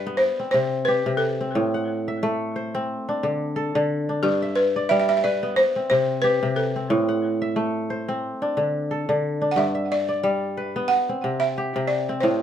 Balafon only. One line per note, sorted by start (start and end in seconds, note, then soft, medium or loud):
0.17 0.50 C5 medium
0.51 0.87 C5 medium
0.85 1.21 B4 medium
1.17 3.83 A4 medium
4.23 4.54 G4 medium
4.56 4.87 B4 medium
4.89 4.98 E5 loud
5.00 5.08 E5 medium
5.09 5.16 E5 loud
5.17 5.23 E5 medium
5.24 5.39 D5 medium
5.56 5.89 C5 loud
5.90 6.24 C5 medium
6.22 6.53 B4 medium
6.56 9.19 A4 medium
9.51 9.57 F#5 medium
9.58 9.92 E5 medium
9.92 10.94 D5 medium
10.88 11.43 F#5 loud
11.40 11.91 E5 medium
11.88 12.03 D5 medium
12.21 12.42 C5 medium